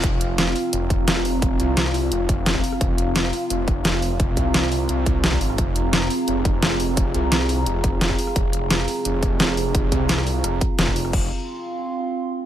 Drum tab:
CC |----------------|----------------|----------------|----------------|
HH |x-x-x-o-x-x-x-o-|x-x-x-o-x-x-x-o-|x-x-x-o-x-x-x-o-|x-x-x-o-x-x-x-o-|
SD |----o-------or--|----o-------o--r|----o-------or--|----o-------o--r|
BD |o---------o-----|o---------o--o--|o---------o-----|o-o-------o--o--|

CC |----------------|----------------|----------------|----------------|
HH |x-x-x-o-x-x-x-o-|x-x-x-o-x-x-x-o-|x-x-x-o-x-x-x-o-|x-x-x-o-x-x-x-o-|
SD |----o-------or--|----o-------o--r|----o-------or--|----or--r---o--r|
BD |o---------o-----|o---------o--o--|o---------o-----|o-o-------o--o--|

CC |x---------------|
HH |----------------|
SD |----------------|
BD |o---------------|